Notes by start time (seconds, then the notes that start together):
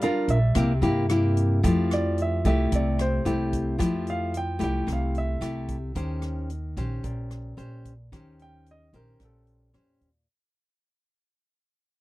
Already playing: G3
0.01 D4 F4 A#4 F5, closed hi-hat
0.28 A#1 E5, closed hi-hat
0.55 C2 C3 A#3 E4 G4, kick, cross-stick, closed hi-hat
0.81 G2 A#3 E4 G4, closed hi-hat
1.09 A#3 E4 G4, cross-stick, closed hi-hat
1.37 closed hi-hat
1.63 F2 F3 A3 E4 G4, kick, closed hi-hat
1.91 D5, cross-stick, closed hi-hat
2.18 closed hi-hat
2.22 E5
2.45 C2 A3 E4 G4 E5, kick, closed hi-hat
2.72 C2 C3 D5, kick, closed hi-hat
2.99 C5, cross-stick, closed hi-hat
3.25 C2 A3 E4 G4, closed hi-hat
3.53 kick, closed hi-hat
3.78 F2 F3 A3 E4 G4, kick, cross-stick, closed hi-hat
4.07 F5, closed hi-hat
4.34 G5, closed hi-hat
4.59 C2 A3 E4 G4, kick, closed hi-hat
4.64 G5
4.87 C2 C3, kick, cross-stick, closed hi-hat
4.93 F5
5.15 E5, closed hi-hat
5.41 C2 A3 E4 G4, cross-stick, closed hi-hat
5.68 kick, closed hi-hat
5.95 D#2 D#3 C#4 G4 C5, kick, closed hi-hat
6.22 cross-stick, closed hi-hat
6.50 closed hi-hat
6.77 A#1 C#4 G4 C5, kick, closed hi-hat
7.04 A#1 A#2, kick, closed hi-hat
7.31 cross-stick, closed hi-hat
7.57 A#1 C#4 G4 C5, closed hi-hat
7.85 kick, closed hi-hat
8.12 D#2 D#3 C#4 G4 C5, kick, cross-stick, closed hi-hat
8.39 G5, closed hi-hat
8.66 closed hi-hat
8.71 D#5
8.93 A#1 C#4 G4 A#4 C5, closed hi-hat
9.20 A#1 A#2, kick, cross-stick, closed hi-hat
9.25 A4
9.47 closed hi-hat
9.74 F2 C#4 G4 C5, cross-stick, closed hi-hat
10.01 D#2, closed hi-hat